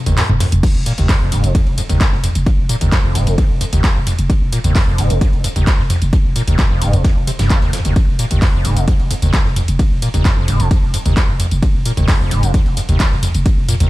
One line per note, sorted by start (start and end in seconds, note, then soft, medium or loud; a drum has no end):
0.06 0.17 F1 medium
0.06 0.16 D#2 loud
0.06 closed hi-hat medium
0.06 tambourine soft
0.17 0.24 D#2 medium
0.17 snare loud
0.17 clap loud
0.17 closed hi-hat medium
0.17 open hi-hat medium
0.17 mid tom medium
0.17 tambourine soft
0.29 0.40 F1 medium
0.29 0.33 F2 medium
0.29 mid tom medium
0.40 0.47 F1 medium
0.40 snare loud
0.40 mid tom medium
0.40 open hi-hat medium
0.40 open hi-hat loud
0.40 tambourine medium
0.52 0.63 F1 medium
0.52 closed hi-hat medium
0.52 mid tom medium
0.52 tambourine soft
0.63 0.67 F2 medium
0.63 kick loud
0.63 closed hi-hat medium
0.63 crash medium
0.63 ride medium
0.63 tambourine soft
0.75 0.86 F1 medium
0.86 0.93 A#2 medium
0.86 open hi-hat loud
0.86 ride medium
0.86 tambourine medium
0.98 1.09 F1 medium
0.98 1.07 D#2 loud
0.98 closed hi-hat medium
0.98 tambourine soft
1.09 1.16 F2 loud
1.09 kick loud
1.09 snare loud
1.09 clap loud
1.09 closed hi-hat medium
1.09 open hi-hat medium
1.09 ride medium
1.09 tambourine soft
1.21 1.31 F1 medium
1.21 1.33 F2 medium
1.32 1.43 F1 loud
1.32 1.45 G#2 medium
1.32 open hi-hat loud
1.32 ride medium
1.32 tambourine medium
1.44 1.55 F1 medium
1.44 1.53 F2 medium
1.44 closed hi-hat medium
1.44 tambourine soft
1.55 1.61 F2 medium
1.55 kick loud
1.55 closed hi-hat medium
1.55 ride medium
1.55 tambourine soft
1.67 1.78 F1 medium
1.67 ride soft
1.78 1.82 F2 medium
1.78 open hi-hat loud
1.78 ride medium
1.78 tambourine medium
1.89 2.00 F1 medium
1.89 1.99 D#2 loud
1.89 closed hi-hat medium
1.89 tambourine soft
2.01 2.07 D#2 medium
2.01 kick loud
2.01 snare loud
2.01 clap loud
2.01 closed hi-hat medium
2.01 ride medium
2.01 tambourine soft
2.12 2.23 F1 medium
2.12 2.16 F2 medium
2.12 snare soft
2.24 2.30 F1 medium
2.24 mid tom medium
2.24 open hi-hat loud
2.24 ride medium
2.24 tambourine medium
2.35 2.46 F1 medium
2.35 closed hi-hat medium
2.35 tambourine soft
2.46 2.50 F2 medium
2.46 kick loud
2.46 closed hi-hat medium
2.46 ride medium
2.46 tambourine soft
2.58 2.69 F1 medium
2.69 2.76 A#2 medium
2.69 open hi-hat loud
2.69 ride medium
2.69 tambourine medium
2.81 2.92 F1 medium
2.81 2.90 D#2 loud
2.81 closed hi-hat medium
2.81 ride soft
2.81 tambourine soft
2.92 2.99 F2 loud
2.92 kick loud
2.92 snare loud
2.92 clap loud
2.92 closed hi-hat medium
2.92 ride medium
2.92 tambourine soft
3.04 3.15 F1 medium
3.04 3.17 F2 medium
3.15 3.26 F1 loud
3.15 3.28 G#2 medium
3.15 open hi-hat loud
3.15 ride medium
3.15 tambourine medium
3.27 3.38 F1 medium
3.27 3.36 F2 medium
3.27 closed hi-hat medium
3.27 ride soft
3.27 tambourine soft
3.38 3.45 F2 medium
3.38 kick loud
3.38 closed hi-hat medium
3.38 ride medium
3.38 tambourine soft
3.50 3.61 F1 medium
3.61 3.65 F2 medium
3.61 open hi-hat loud
3.61 ride medium
3.61 tambourine medium
3.73 3.84 F1 medium
3.73 3.82 D#2 loud
3.73 closed hi-hat medium
3.73 tambourine soft
3.84 kick loud
3.84 snare loud
3.84 clap loud
3.84 closed hi-hat medium
3.84 ride medium
3.84 tambourine soft
3.96 4.07 F1 medium
3.96 3.99 F2 medium
4.07 4.13 F1 medium
4.07 mid tom medium
4.07 open hi-hat loud
4.07 ride medium
4.07 tambourine medium
4.19 4.29 F1 medium
4.19 closed hi-hat medium
4.19 tambourine soft
4.30 4.34 F2 medium
4.30 kick loud
4.30 closed hi-hat medium
4.30 ride medium
4.30 tambourine soft
4.41 4.52 F1 medium
4.52 4.59 A#2 medium
4.52 open hi-hat loud
4.52 ride medium
4.52 tambourine medium
4.64 4.75 F1 medium
4.64 4.73 D#2 loud
4.64 closed hi-hat medium
4.64 tambourine soft
4.75 4.82 F2 loud
4.75 kick loud
4.75 snare loud
4.75 clap loud
4.75 closed hi-hat medium
4.75 open hi-hat medium
4.75 ride medium
4.75 tambourine soft
4.87 4.98 F1 medium
4.87 5.00 F2 medium
4.98 5.09 F1 loud
4.98 5.12 G#2 medium
4.98 open hi-hat loud
4.98 ride medium
4.98 tambourine medium
5.10 5.21 F1 medium
5.10 5.19 F2 medium
5.10 closed hi-hat medium
5.10 tambourine soft
5.21 5.28 F2 medium
5.21 kick loud
5.21 closed hi-hat medium
5.21 ride medium
5.21 tambourine soft
5.33 5.44 F1 medium
5.33 ride soft
5.44 5.48 F2 medium
5.44 open hi-hat loud
5.44 ride medium
5.44 tambourine medium
5.56 5.67 F1 medium
5.56 5.65 D#2 loud
5.56 closed hi-hat medium
5.56 tambourine soft
5.67 5.74 D#2 medium
5.67 kick loud
5.67 snare loud
5.67 clap loud
5.67 closed hi-hat medium
5.67 ride medium
5.67 tambourine soft
5.79 5.90 F1 medium
5.79 5.83 F2 medium
5.79 snare soft
5.90 5.97 F1 medium
5.90 mid tom loud
5.90 open hi-hat loud
5.90 ride medium
5.90 tambourine medium
6.02 6.13 F1 medium
6.02 closed hi-hat medium
6.02 tambourine soft
6.13 6.17 F2 medium
6.13 kick loud
6.13 closed hi-hat medium
6.13 ride medium
6.13 tambourine soft
6.25 6.36 F1 medium
6.36 6.42 A#2 medium
6.36 open hi-hat loud
6.36 ride medium
6.36 tambourine medium
6.48 6.59 F1 medium
6.48 6.57 D#2 loud
6.48 closed hi-hat medium
6.48 ride soft
6.48 tambourine soft
6.59 kick loud
6.59 snare loud
6.59 clap loud
6.59 closed hi-hat medium
6.59 ride medium
6.59 tambourine soft
6.70 6.81 F1 medium
6.70 6.83 F2 medium
6.82 6.93 F1 loud
6.82 6.95 G#2 medium
6.82 open hi-hat loud
6.82 ride medium
6.82 tambourine medium
6.93 7.04 F1 medium
6.93 7.03 F2 medium
6.93 closed hi-hat medium
6.93 mid tom medium
6.93 ride soft
6.93 tambourine soft
7.04 7.11 F2 medium
7.04 kick loud
7.04 snare loud
7.04 closed hi-hat medium
7.04 ride medium
7.04 tambourine soft
7.16 7.27 F1 medium
7.27 7.31 C3 medium
7.27 open hi-hat loud
7.27 ride medium
7.27 tambourine medium
7.39 7.50 F1 medium
7.39 7.52 G2 medium
7.39 snare loud
7.39 closed hi-hat medium
7.39 ride medium
7.39 tambourine soft
7.50 7.60 F2 medium
7.50 kick loud
7.50 clap loud
7.50 closed hi-hat medium
7.50 ride medium
7.50 tambourine soft
7.62 7.73 F1 medium
7.62 7.71 D#2 medium
7.62 ride medium
7.73 7.80 F2 loud
7.73 snare loud
7.73 mid tom loud
7.73 open hi-hat loud
7.73 ride medium
7.73 tambourine medium
7.85 7.96 F1 medium
7.85 7.94 D#2 medium
7.85 closed hi-hat medium
7.85 tambourine soft
7.96 8.00 F2 medium
7.96 kick loud
7.96 closed hi-hat medium
7.96 ride medium
7.96 tambourine soft
8.08 8.19 F1 medium
8.19 8.26 A#2 medium
8.19 open hi-hat loud
8.19 ride medium
8.19 tambourine medium
8.31 8.42 F1 medium
8.31 8.40 D#2 loud
8.31 closed hi-hat medium
8.31 tambourine soft
8.42 kick loud
8.42 snare loud
8.42 clap loud
8.42 closed hi-hat medium
8.42 open hi-hat medium
8.42 ride medium
8.42 tambourine soft
8.54 8.64 F1 medium
8.54 8.66 F2 medium
8.65 8.76 F1 loud
8.65 8.78 G#2 medium
8.65 open hi-hat loud
8.65 ride medium
8.65 tambourine medium
8.76 8.88 F1 medium
8.76 8.86 F2 medium
8.76 closed hi-hat medium
8.76 tambourine soft
8.88 8.94 F2 medium
8.88 kick loud
8.88 closed hi-hat medium
8.88 ride medium
8.88 tambourine soft
9.00 9.10 F1 medium
9.00 ride soft
9.11 9.15 F2 medium
9.11 open hi-hat loud
9.11 ride medium
9.11 tambourine medium
9.22 9.33 F1 medium
9.22 9.32 D#2 loud
9.22 closed hi-hat medium
9.22 tambourine soft
9.34 9.40 D#2 medium
9.34 kick loud
9.34 snare loud
9.34 clap loud
9.34 closed hi-hat medium
9.34 ride medium
9.34 tambourine soft
9.45 9.56 F1 medium
9.45 9.49 F2 medium
9.45 snare soft
9.56 9.63 F1 medium
9.56 mid tom loud
9.56 open hi-hat loud
9.56 ride medium
9.56 tambourine medium
9.68 9.79 F1 medium
9.68 closed hi-hat medium
9.68 tambourine soft
9.79 9.83 F2 medium
9.79 kick loud
9.79 closed hi-hat medium
9.79 ride medium
9.79 tambourine soft
9.91 10.02 F1 medium
10.02 10.09 A#2 medium
10.02 open hi-hat loud
10.02 ride medium
10.02 tambourine medium
10.14 10.25 F1 medium
10.14 10.23 D#2 loud
10.14 closed hi-hat medium
10.14 ride soft
10.14 tambourine soft
10.25 10.32 F2 loud
10.25 kick loud
10.25 snare loud
10.25 clap loud
10.25 closed hi-hat medium
10.25 ride medium
10.25 tambourine soft
10.37 10.47 F1 medium
10.37 10.50 F2 medium
10.48 10.59 F1 loud
10.48 10.61 G#2 medium
10.48 open hi-hat loud
10.48 ride medium
10.48 tambourine medium
10.60 10.71 F1 medium
10.60 10.69 F2 medium
10.60 closed hi-hat medium
10.60 ride soft
10.60 tambourine soft
10.71 10.77 F2 medium
10.71 kick loud
10.71 closed hi-hat medium
10.71 ride medium
10.71 tambourine soft
10.83 10.94 F1 medium
10.94 10.98 F2 medium
10.94 open hi-hat loud
10.94 ride medium
10.94 tambourine medium
11.06 11.17 F1 medium
11.06 11.15 D#2 loud
11.06 closed hi-hat medium
11.06 tambourine soft
11.17 11.23 D#2 medium
11.17 kick loud
11.17 snare loud
11.17 clap loud
11.17 closed hi-hat medium
11.17 ride medium
11.17 tambourine soft
11.28 11.39 F1 medium
11.28 11.32 F2 medium
11.40 11.46 F1 medium
11.40 mid tom loud
11.40 open hi-hat loud
11.40 ride medium
11.40 tambourine medium
11.51 11.62 F1 medium
11.51 closed hi-hat medium
11.51 tambourine soft
11.63 11.66 F2 medium
11.63 kick loud
11.63 closed hi-hat medium
11.63 ride medium
11.63 tambourine soft
11.74 11.85 F1 medium
11.86 11.92 A#2 medium
11.86 open hi-hat loud
11.86 ride medium
11.86 tambourine medium
11.97 12.08 F1 medium
11.97 12.06 D#2 loud
11.97 closed hi-hat medium
11.97 tambourine soft
12.08 12.15 F2 loud
12.08 kick loud
12.08 snare loud
12.08 clap loud
12.08 closed hi-hat medium
12.08 open hi-hat medium
12.08 ride medium
12.08 tambourine soft
12.20 12.31 F1 medium
12.20 12.33 F2 medium
12.31 12.42 F1 loud
12.31 12.45 G#2 medium
12.31 open hi-hat loud
12.31 ride medium
12.31 tambourine medium
12.43 12.54 F1 medium
12.43 12.52 F2 medium
12.43 closed hi-hat medium
12.43 tambourine soft
12.54 12.61 F2 medium
12.54 kick loud
12.54 closed hi-hat medium
12.54 ride medium
12.54 tambourine soft
12.66 12.77 F1 medium
12.66 ride soft
12.77 12.81 F2 medium
12.77 open hi-hat loud
12.77 ride medium
12.77 tambourine medium
12.89 13.00 F1 medium
12.89 12.98 D#2 loud
12.89 closed hi-hat medium
12.89 tambourine soft
13.00 kick loud
13.00 snare loud
13.00 clap loud
13.00 closed hi-hat medium
13.00 ride medium
13.00 tambourine soft
13.12 13.23 F1 medium
13.12 13.15 F2 medium
13.12 snare soft
13.23 13.29 F1 medium
13.23 mid tom loud
13.23 open hi-hat loud
13.23 ride medium
13.23 tambourine medium
13.34 13.46 F1 medium
13.34 closed hi-hat medium
13.34 tambourine soft
13.46 13.50 F2 medium
13.46 kick loud
13.46 closed hi-hat medium
13.46 ride medium
13.46 tambourine soft
13.57 13.68 F1 medium
13.69 13.75 A#2 medium
13.69 mid tom medium
13.69 open hi-hat loud
13.69 ride medium
13.69 tambourine medium
13.80 13.90 F1 medium
13.80 13.90 D#2 loud
13.80 closed hi-hat medium
13.80 ride soft
13.80 tambourine soft